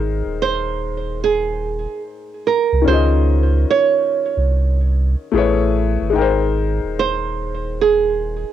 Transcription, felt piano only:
Already playing: G#3 D#4 A#4 C5 G5
2.82 D#3 C#4
2.87 F4 G#4
2.93 D#5
5.32 A3 E4 G#4
5.36 B4 C#5
6.10 G#3 D#4
6.15 A#4 G5
6.21 C5

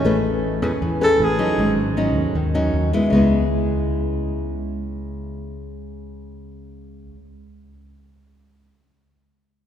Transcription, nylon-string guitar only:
0.05 A3 C#4 G#4 B4
0.62 C#4 G#4 B4
0.82 E3
1.01 C#4 G#4 B4
1.39 F#3 C#4 D#4
1.59 G#2
1.97 F#3 C#4 D#4
2.35 D#3
2.55 F#3 C#4 D#4
2.93 G#3 B3 E4
3.10 C#3 G#3
3.14 B3 E4

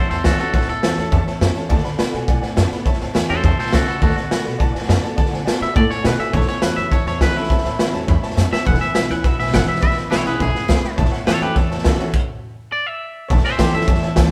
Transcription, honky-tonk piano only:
0.11 C#5 E5 A5
0.24 C#5 E5 A5
0.39 C#5 E5 F#5
0.53 C#5 E5 A5
0.68 C#5 E5 F#5
0.82 C#5 E5 A5
0.96 C#5 E5 A5
1.11 C#5 E5 A5
1.26 C#5 E5 A5
1.41 C#5 E5 A5
1.55 C#5 E5 A5
1.69 D5 F#5 A5
1.83 D5 F#5 B5
1.98 D5 F#5 B5
2.13 D5 F#5 G#5
2.28 D5 F#5 G#5
2.41 D5 F#5 G#5
2.57 D5 F#5 A5
2.71 D5 F#5 B5
2.85 C#5 E5 A5
3.00 C#5 E5 A5
3.14 C#5 E5 G#5
3.29 C#5 E5 A5
3.44 C#5 E5 A5
3.58 C#5 A5
3.72 C#5 E5 A5
3.87 C#5 E5 B5
4.01 D5 F#5 A5
4.16 D5 F#5 A5
4.31 D5 F#5 B5
4.45 D5 F#5 B5
4.58 D5 F#5 A5
4.72 D5 F#5 G#5
4.88 D5 F#5 A5
5.02 D5 F#5 A5
5.16 D5 F#5 A5
5.31 D5 F#5 G#5
5.45 D5 F#5 A5
5.61 D5 F#5 B5
5.74 D5 F#5 A5
5.89 D5 F#5 G#5
6.03 D5 F#5 G#5
6.18 D5 F#5 G#5
6.33 C#5 E5 A5
6.47 C#5 E5 G#5
6.62 C#5 E5 A5
6.77 C#5 E5 B5
6.91 C#5 E5 A5
7.05 C#5 E5 A5
7.21 C#5 E5 A5
7.34 C#5 E5 A5
7.49 C#5 E5 A5
7.63 C#5 E5 A5
7.78 C#5 E5 B5
7.92 C#5 E5 A5
8.07 C#5 E5 B5
8.22 C#5 E5 A5
8.36 C#5 E5 A5
8.51 C#5 E5 A5
8.65 B4 E5 G#5
8.79 B4 G#5
8.95 B4 E5 F#5
9.10 B4 E5 G#5
9.24 B4 E5 F#5
9.39 B4 E5 G#5
9.53 B4 E5 G#5
9.67 B4 E5 F#5
9.81 B4 E5 B5
9.96 B4 E5 B5
10.11 B4 E5 G#5
10.25 B4 E5 F#5
10.39 B4 E5 G#5
10.54 B4 E5 F#5
10.68 B4 E5 G#5
10.82 B4 E5 B5
10.96 C#5 E5 A5
11.10 C#5 E5 F#5
11.26 C#5 E5 A5
11.41 C#5 E5 A5
11.55 C#5 E5 A5
11.70 C#5 E5 A5
11.85 C#5 E5 F#5
11.99 C#5 E5 F#5
13.28 C#5 E5 A5
13.44 C#5 G#5
13.58 C#5 E5 A5
13.72 C#5 E5 A5
13.87 C#5 E5 A5
14.01 C#5 E5 A5
14.16 C#5 E5 A5

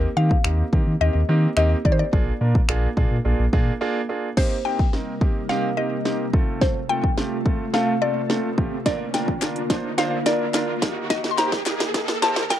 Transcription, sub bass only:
0.17 D#3
0.45 D#2
0.73 D#3
0.87 D#3
1.01 D#2
1.15 D#2
1.29 D#3
1.57 D#2
1.85 D#3
2.13 A#1
2.41 A#2
2.69 A#1
2.97 A#2
3.11 A#2
3.25 A#1
3.39 A#1
3.53 A#2

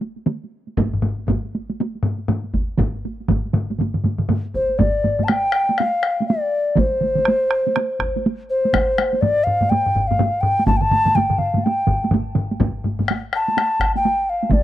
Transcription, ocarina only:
4.55 C5
4.78 D5
5.24 A5
5.30 G5
5.79 F5
6.28 D5
6.79 C5
8.50 C5
9.21 D5
9.44 F5
9.70 G5
10.07 F5
10.41 G5
10.67 A5
10.77 G5
10.81 A5
11.15 G5
11.38 F5
11.64 G5
13.35 A5
13.96 G5
14.30 F5
14.52 D5

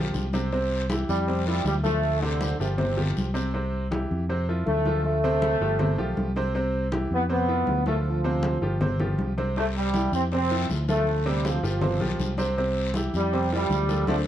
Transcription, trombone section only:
1.09 G3
1.47 G3
1.66 G3
1.84 A3
2.21 D3
2.59 C3
2.78 C3
4.67 A3
5.05 A3
7.14 B3
7.32 B3
7.87 A3
8.06 F3
9.58 A3
9.77 G3
10.15 C4
10.34 C4
10.90 A3
11.28 G3
11.46 F3
11.65 F3
13.16 G3
13.54 G3
14.08 D3 F3 A3

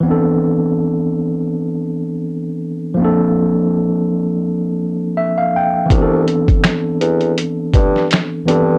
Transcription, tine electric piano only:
0.00 E3 B3
0.05 C4 D4
0.11 A4
2.94 F3 A#3
3.00 C4 D4
3.05 A4
5.17 E5
5.38 F5
5.56 G5
5.86 E3 B3
5.91 C4 D4
5.96 G4
6.02 A4
8.45 E3 B3 C4
8.49 D4 A4

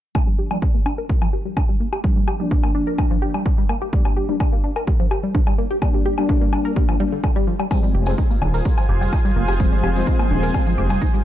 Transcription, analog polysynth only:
0.15 F3 A#3 D4
0.51 F3 A#3 D4
2.04 F3 A#3 D4
2.40 F3 A#3 D4
3.22 F3 A#3 D4
3.93 G3 A#3 D4
4.29 G3 A#3 D4
5.82 G3 A#3 D4
6.18 G3 A#3 D4
7.00 G3 A#3 D4
7.71 F3 G#3 C4
8.07 F3 G#3 C4
9.60 F3 G#3 C4
9.96 F3 G#3 C4
10.78 F3 G#3 C4

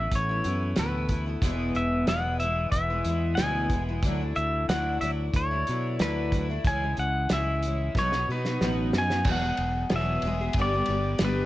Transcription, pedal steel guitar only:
Already playing: E5
0.15 C#5
0.79 B4
1.76 E5
2.08 F#5
2.40 E5
2.71 E5
3.35 G#5
4.36 E5
4.69 F#5
5.01 E5
5.36 C#5
6.02 B4
6.67 G#5
6.99 F#5
7.33 E5
7.98 C#5
8.31 B4
8.98 G#5
9.32 F#5
9.96 E5
10.62 D5
11.24 B4

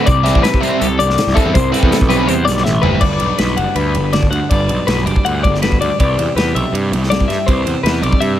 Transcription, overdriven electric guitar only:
0.24 C3 G3 C4 E4
0.61 C3 G3 C4 E4
1.35 C3 G3 C4 E4
1.73 C3 G3 C4 E4
2.09 C3 G3 C4 E4
2.83 C3 G3 C4 E4

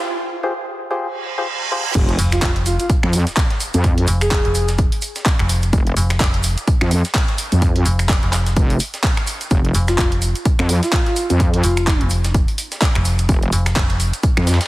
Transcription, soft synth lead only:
2.32 F4
2.66 F4
2.80 F4
4.21 G#4
9.88 F4
10.83 F4
11.06 F4
11.64 F4

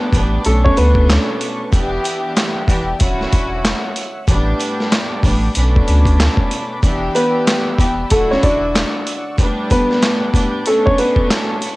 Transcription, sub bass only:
0.13 A1
0.46 B1
0.78 D2
1.73 E1
2.68 E1
3.01 D1
3.33 E1
4.28 A1
5.23 A1
5.56 B1
5.88 D2
6.83 E1
7.79 E1
8.12 D1
8.44 E1

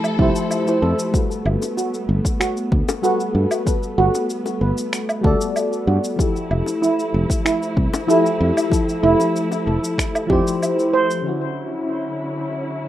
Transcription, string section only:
Already playing: F3 A3 E4 A4
1.14 B3
6.19 F3 A3 E4
11.25 D3 F#3 C#4 E4

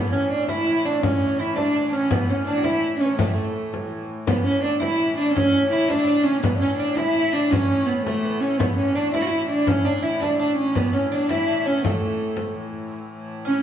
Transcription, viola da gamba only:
Already playing: B3
0.13 C#4
0.31 D4
0.50 E4
0.85 D4
1.02 C#4
1.40 E4
1.57 D4
1.94 C#4
2.11 B3
2.29 C#4
2.48 D4
2.64 E4
2.96 D4
3.00 C#4
3.17 A3
3.25 G3
3.32 A3
4.28 B3
4.45 C#4
4.63 D4
4.82 E4
5.17 D4
5.33 C#4
5.71 E4
5.89 D4
6.23 C#4
6.42 B3
6.60 C#4
6.77 D4
6.95 E4
7.32 D4
7.50 C#4
7.86 B3
8.02 A3
8.40 C#4
8.58 B3
8.77 C#4
8.95 D4
9.13 E4
9.22 F#4
9.27 E4
9.49 D4
9.67 C#4
9.85 D4
10.02 E4
10.20 D4
10.38 D4
10.56 C#4
10.75 B3
10.94 C#4
11.12 D4
11.29 E4
11.66 C#4
11.83 A3
13.47 C#4

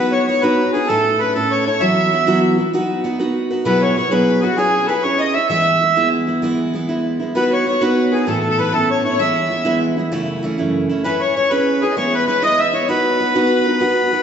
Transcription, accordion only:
Already playing: B4
0.12 C#5
0.28 C#5
0.41 B4
0.72 G#4
0.87 A4
1.19 B4
1.35 A4
1.51 C#5
1.66 C#5
1.80 E5
3.66 B4
3.83 C#5
3.98 C#5
4.12 B4
4.40 F#4 G#4
4.58 G#4
4.86 A4 B4
5.03 C#5
5.20 D#5
5.34 E5
5.49 E5
7.36 B4
7.53 C#5
7.68 C#5
7.82 B4
8.13 G#4
8.28 A4
8.39 A4
8.50 A4
8.59 B4
8.74 A4
8.91 C#5
9.05 C#5
9.21 E5
11.04 B4
11.20 C#5
11.36 C#5
11.50 B4
11.81 G#4
11.97 C#5
12.14 B4
12.27 B4
12.44 D#5
12.60 E5
12.74 C#5
12.89 B4

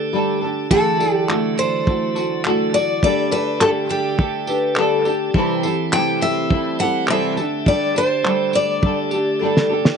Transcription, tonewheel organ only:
Already playing: D3 A3 G4 A4
0.71 F#3 E4
3.03 A3 G4
5.35 E3 C4 G4
7.37 D3 A3 A4

